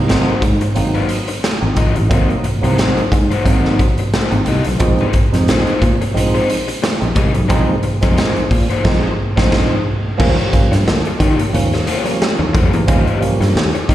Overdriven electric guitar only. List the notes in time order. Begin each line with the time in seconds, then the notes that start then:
0.08 A#3 D#4 F#4 C5
0.42 muted overdriven electric guitar stroke
0.62 muted overdriven electric guitar stroke
0.76 muted overdriven electric guitar stroke
0.94 A#3 D#4 F#4 C5
1.09 muted overdriven electric guitar stroke
1.28 muted overdriven electric guitar stroke
1.44 muted overdriven electric guitar stroke
1.77 A#3 D#4 F#4 D#5
1.97 muted overdriven electric guitar stroke
2.11 A#3 D#4 F#4 C5
2.30 muted overdriven electric guitar stroke
2.44 muted overdriven electric guitar stroke
2.64 A#3 D#4 F#4 C5
2.78 A#3 D#4 F#4 C5
3.13 muted overdriven electric guitar stroke
3.31 A#3 D#4 F#4 C5
3.46 A#3 D#4 F#4 C5
3.80 muted overdriven electric guitar stroke
3.99 muted overdriven electric guitar stroke
4.14 A#3 D#4 F#4 C5
4.33 muted overdriven electric guitar stroke
4.47 A#3 D#4 F#4 D#5
4.67 muted overdriven electric guitar stroke
4.81 muted overdriven electric guitar stroke
5.01 A#3 D#4 G#4 C5
5.16 muted overdriven electric guitar stroke
5.35 muted overdriven electric guitar stroke
5.49 A#3 D#4 G#4 C5
5.83 muted overdriven electric guitar stroke
6.01 muted overdriven electric guitar stroke
6.17 muted overdriven electric guitar stroke
6.34 A#3 D#4 G#4 C5
6.49 muted overdriven electric guitar stroke
6.68 muted overdriven electric guitar stroke
6.82 muted overdriven electric guitar stroke
7.15 A#3 D#4 G#4 D#5
7.34 muted overdriven electric guitar stroke
7.48 A#3 D#4 G#4 C5
7.68 muted overdriven electric guitar stroke
7.84 muted overdriven electric guitar stroke
8.03 A#3 D#4 G#4 C5
8.16 A#3 D#4 G#4 C5
8.52 muted overdriven electric guitar stroke
8.70 A#3 D#4 G#4 C5
8.85 A#3 D#4 G#4 C5
9.36 A#3 D#4 G#4 C5
9.51 A#3 D#4 G#4 C5
10.19 A3 E4 F#4 C5
10.32 A#3 F4 G4 C#5
10.72 muted overdriven electric guitar stroke
11.07 muted overdriven electric guitar stroke
11.21 A#3 F4 G4 C#5
11.40 muted overdriven electric guitar stroke
11.55 muted overdriven electric guitar stroke
11.74 muted overdriven electric guitar stroke
11.87 A#3 F4 G4 C#5
12.07 muted overdriven electric guitar stroke
12.22 muted overdriven electric guitar stroke
12.39 muted overdriven electric guitar stroke
12.54 A#3 F4 G4 C#5
12.74 muted overdriven electric guitar stroke
12.88 A#3 F4 G4 D#5
13.41 muted overdriven electric guitar stroke
13.75 muted overdriven electric guitar stroke
13.90 A#3 F4 G4 C#5